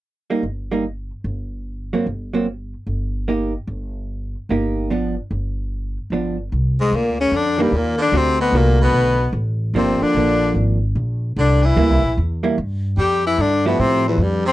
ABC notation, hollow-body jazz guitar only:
X:1
M:4/4
L:1/8
Q:"Swing" 1/4=148
K:Gphr
V:1 name="Hollow-body jazz guitar"
z [G,B,E] z [G,B,E] z4 | z [^F,B,C] z [F,B,C] z4 | [B,EG] z4 z [B,EG]2 | [F,=B,D] z4 z [F,B,D] z |
z4 z [E,B,D] z2 | [D,=A,C^F]2 [D,A,F]3 z3 | [F,B,D]2 [F,B,D]3 z3 | z2 [G,B,=E] z2 [G,B,E] z2 |
z3 [F,=A,=EG]3 z2 |]